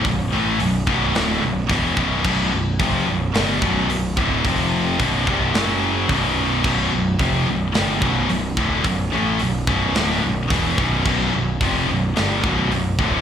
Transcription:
<<
  \new Staff \with { instrumentName = "Distorted electric guitar" } { \clef bass \time 4/4 \key b \phrygian \tempo 4 = 109 <b,, fis,>8 <a, e a>8 <b,, fis,>8 <b,, fis, b,>8 <d, a, d>8 <b,, fis,>8 <e, b, e>8 <b,, fis, b,>8 | <b,, fis, b,>8 <b,, fis,>8 <eis, c eis>8 <b,, fis,>8 <g, d g>8 <b,, fis, b,>8 <b,, fis,>8 <d, a, d>8 | <f, c f>4 <b,, fis, b,>8 <c, g, c>8 <fis, cis fis>4 <b,, fis, b,>4 | <b,, fis, b,>8 <b,, fis,>8 <eis, c eis>8 <b,, fis,>8 <g, d g>8 <b,, fis, b,>8 <b,, fis,>8 <d, a, d>8 |
<b,, fis,>8 <a, e a>8 <b,, fis,>8 <b,, fis, b,>8 <d, a, d>8 <b,, fis,>8 <e, b, e>8 <b,, fis, b,>8 | <b,, fis, b,>8 <b,, fis,>8 <eis, c eis>8 <b,, fis,>8 <g, d g>8 <b,, fis, b,>8 <b,, fis,>8 <d, a, d>8 | }
  \new Staff \with { instrumentName = "Distorted electric guitar" } { \clef bass \time 4/4 \key b \phrygian <b,, fis,>8 <a, e a>8 <b,, fis,>8 <b,, fis, b,>8 <d, a, d>8 <b,, fis,>8 <e, b, e>8 <b,, fis, b,>8 | <b,, fis, b,>8 <b,, fis,>8 <eis, c eis>8 <b,, fis,>8 <g, d g>8 <b,, fis, b,>8 <b,, fis,>8 <d, a, d>8 | <f, c f>4 <b,, fis, b,>8 <c, g, c>8 <fis, cis fis>4 <b,, fis, b,>4 | <b,, fis, b,>8 <b,, fis,>8 <eis, c eis>8 <b,, fis,>8 <g, d g>8 <b,, fis, b,>8 <b,, fis,>8 <d, a, d>8 |
<b,, fis,>8 <a, e a>8 <b,, fis,>8 <b,, fis, b,>8 <d, a, d>8 <b,, fis,>8 <e, b, e>8 <b,, fis, b,>8 | <b,, fis, b,>8 <b,, fis,>8 <eis, c eis>8 <b,, fis,>8 <g, d g>8 <b,, fis, b,>8 <b,, fis,>8 <d, a, d>8 | }
  \new Staff \with { instrumentName = "Overdriven electric guitar" } { \clef bass \time 4/4 \key b \phrygian <b,, fis,>8 <a, e a>8 <b,, fis,>8 <b,, fis, b,>8 <d, a, d>8 <b,, fis,>8 <e, b, e>8 <b,, fis, b,>8 | <b,, fis, b,>8 <b,, fis,>8 <eis, c eis>8 <b,, fis,>8 <g, d g>8 <b,, fis, b,>8 <b,, fis,>8 <d, a, d>8 | <f, c f>4 <b,, fis, b,>8 <c, g, c>8 <fis, cis fis>4 <b,, fis, b,>4 | <b,, fis, b,>8 <b,, fis,>8 <eis, c eis>8 <b,, fis,>8 <g, d g>8 <b,, fis, b,>8 <b,, fis,>8 <d, a, d>8 |
<b,, fis,>8 <a, e a>8 <b,, fis,>8 <b,, fis, b,>8 <d, a, d>8 <b,, fis,>8 <e, b, e>8 <b,, fis, b,>8 | <b,, fis, b,>8 <b,, fis,>8 <eis, c eis>8 <b,, fis,>8 <g, d g>8 <b,, fis, b,>8 <b,, fis,>8 <d, a, d>8 | }
  \new Staff \with { instrumentName = "Picked electric bass" } { \clef bass \time 4/4 \key b \phrygian b,,,8 a,,8 b,,,8 b,,,8 d,,8 b,,,8 e,,8 b,,,8 | b,,,8 b,,,8 eis,,8 b,,,8 g,,8 b,,,8 b,,,8 d,,8 | f,,4 b,,,8 c,,8 fis,,4 b,,,4 | b,,,8 b,,,8 eis,,8 b,,,8 g,,8 b,,,8 b,,,8 d,,8 |
b,,,8 a,,8 b,,,8 b,,,8 d,,8 b,,,8 e,,8 b,,,8 | b,,,8 b,,,8 eis,,8 b,,,8 g,,8 b,,,8 b,,,8 d,,8 | }
  \new DrumStaff \with { instrumentName = "Drums" } \drummode { \time 4/4 <hho bd>4 hho8 bd8 <hho sn>4 <hho bd sn>8 bd8 | <cymc bd>4 <hho bd>4 <hho sn>8 bd8 hho8 bd8 | <hho bd>4 <hho bd>8 bd8 <hho sn>4 <hho bd>4 | <cymc bd>4 <hho bd>4 <hho sn>8 bd8 hho8 bd8 |
<hho bd>4 hho8 bd8 <hho sn>4 <hho bd sn>8 bd8 | <cymc bd>4 <hho bd>4 <hho sn>8 bd8 hho8 bd8 | }
>>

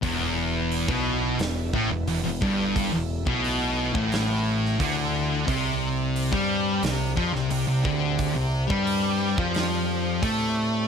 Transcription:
<<
  \new Staff \with { instrumentName = "Tonewheel organ" } { \time 4/4 \key e \phrygian \tempo 4 = 88 <e e'>1~ | <e e'>1 | <c' d''>1~ | <c' d''>1 | }
  \new Staff \with { instrumentName = "Tonewheel organ" } { \time 4/4 \key e \phrygian b1 | a1 | g'1~ | g'1 | }
  \new Staff \with { instrumentName = "Distorted electric guitar" } { \clef bass \time 4/4 \key e \phrygian e,4~ e,16 b,8. e,8 a,16 e,16 e,16 e,16 g,8~ | g,16 e,8 b,4 a,4~ a,16 d4 | c4~ c16 g8. c8 f16 c16 c16 c16 d8~ | d16 c8 g4 f4~ f16 a4 | }
  \new Staff \with { instrumentName = "Distorted electric guitar" } { \clef bass \time 4/4 \key e \phrygian e,4~ e,16 b,8. e,8 a,16 e,16 e,16 e,16 g,8~ | g,16 e,8 b,4 a,4~ a,16 d4 | c4~ c16 g8. c8 f16 c16 c16 c16 d8~ | d16 c8 g4 f4~ f16 a4 | }
  \new Staff \with { instrumentName = "Distorted electric guitar" } { \clef bass \time 4/4 \key e \phrygian e,4~ e,16 b,8. e,8 a,16 e,16 e,16 e,16 g,8~ | g,16 e,8 b,4 a,4~ a,16 d4 | c4~ c16 g8. c8 f16 c16 c16 c16 d8~ | d16 c8 g4 f4~ f16 a4 | }
  \new Staff \with { instrumentName = "Picked electric bass" } { \clef bass \time 4/4 \key e \phrygian e,,4~ e,,16 b,,8. e,,8 a,,16 e,,16 e,,16 e,,16 g,,8~ | g,,16 e,,8 b,,4 a,,4~ a,,16 d,4 | c,4~ c,16 g,8. c,8 f,16 c,16 c,16 c,16 d,8~ | d,16 c,8 g,4 f,4~ f,16 a,4 | }
  \new DrumStaff \with { instrumentName = "Drums" } \drummode { \time 4/4 <hho bd>4 hho16 bd8. <hho sn>8 bd8 hho8 bd8 | <hho bd>8. bd16 hho8. bd16 <hho sn>8. sn16 <hho bd>4 | <hho bd>4 hho16 bd8. <hho sn>8 bd16 sn16 hho8 bd8 | <hho bd>8. bd16 hho8. bd16 <hho sn>4 <hho bd>4 | }
>>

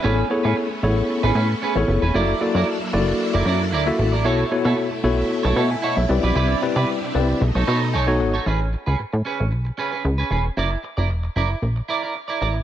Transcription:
<<
  \new Staff \with { instrumentName = "Clean electric guitar" } { \time 4/4 \key a \lydian \tempo 4 = 114 <cis' gis' b'>8 r16 <cis' gis' b'>16 r4 r16 <cis' gis' b'>16 <cis' gis' b'>16 r16 <cis' gis' b'>8 r16 <cis' gis' b'>16 | <e' ais' d''>8 r16 <e' ais' d''>16 r4 r16 <e' ais' d''>16 <e' ais' d''>16 r16 <e' ais' d''>8 r16 <e' ais' d''>16 | <e' a' cis''>8 r16 <e' a' cis''>16 r4 r16 <e' a' cis''>16 <e' a' cis''>16 r16 <e' a' cis''>8 r16 <e' b' d''>16 | <e' b' d''>8 r16 <e' b' d''>16 r4 r16 <dis' a' cis''>16 <dis' a' cis''>8 <dis' a' cis''>8 r16 <dis' a' cis''>16 |
<cis' gis' b'>8 r16 <cis' gis' b'>16 r8 <cis' gis' b'>8 r8 <cis' gis' b'>16 <cis' gis' b'>16 r16 <cis' gis' b'>16 <cis' gis' b'>16 r16 | <e' ais' d''>8 r16 <e' ais' d''>16 r8 <e' ais' d''>8 r8 <e' ais' d''>16 <e' ais' d''>16 r16 <e' ais' d''>16 <e' ais' d''>16 r16 | }
  \new Staff \with { instrumentName = "Tine electric piano" } { \time 4/4 \key a \lydian << { r1 | r1 | r2 r8 <dis'' fis''>16 <e'' gis''>16 <dis'' fis''>16 <cis'' e''>8 r16 | r2 r8 b''8 gis''8 fis''8 |
r1 | r1 | } \\ { <b e' gis' a' cis''>16 r16 <b e' gis' a' cis''>8. r16 <b e' gis' a' cis''>4~ <b e' gis' a' cis''>16 r8 <b e' gis' a' cis''>8 r16 | <ais e' fis' a' d''>16 r16 <ais e' fis' a' d''>8. r16 <ais e' fis' a' d''>4~ <ais e' fis' a' d''>16 r8 <ais e' fis' a' e''>8 r16 | <b e' fis' a' cis''>16 r16 <b e' fis' a' cis''>8. r16 <b e' fis' a' cis''>4~ <b e' fis' a' cis''>16 r8. <c' e' g' b' d''>8~ | <c' e' g' b' d''>16 r16 <c' e' g' b' d''>8. r16 <c' e' g' b' d''>8 r4 r16 <b dis' fis' a' cis''>8 r16 |
r1 | r1 | } >> }
  \new Staff \with { instrumentName = "String machine" } { \time 4/4 \key a \lydian << { cis'1 | ais1 | e'1~ | e'2 dis'2 |
r1 | r1 | } \\ { <a b>1 | <fis d' e' a'>1 | <b, a>2.~ <b, a>8 <c g d'>8~ | <c g d'>2 a2 |
r1 | r1 | } >> }
  \new Staff \with { instrumentName = "Analog synth bass" } { \clef bass \time 4/4 \key a \lydian a,,8 r16 a,16 r8 a,,8 r16 a,,16 a,8 r16 a,,16 fis,,16 e,,16 | fis,,8 r16 fis,16 r8 fis,,8 r16 fis,,16 fis,8 d,8 a,,8 | b,,8 r16 b,16 r8 b,,8 r16 b,,16 b,8 r16 b,,16 c,16 b,,16 | c,8 r16 c16 r8 c,8 b,,16 b,,16 b,8 b,,8 gis,,8 |
a,,8. cis,16 r16 a,16 r16 a,,16 b,,8 r8 cis,8 e,,8 | fis,,8 r16 fis,,16 e,,8 fis,,8 ais,,8 r4 a,,8 | }
>>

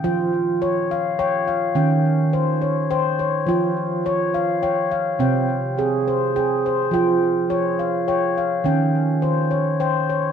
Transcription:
<<
  \new Staff \with { instrumentName = "Handpan" } { \time 6/8 \key f \minor \tempo 4. = 70 << { g''4. f''8 g''8 f''8 | g''4. des''8 g''8 des''8 | g''4. f''8 g''8 f''8 | g''4. c''8 g''8 c''8 |
g''4. f''8 g''8 f''8 | g''4. des''8 g''8 des''8 | } \\ { f'4 des''4 des''4 | des'4 c''4 c''4 | f'4 des''4 des''4 | c'4 aes'4 aes'4 |
f'4 des''4 des''4 | des'4 c''4 c''4 | } >> }
  \new Staff \with { instrumentName = "Handpan" } { \clef bass \time 6/8 \key f \minor f2. | ees2. | f2. | c2. |
f2. | ees2. | }
>>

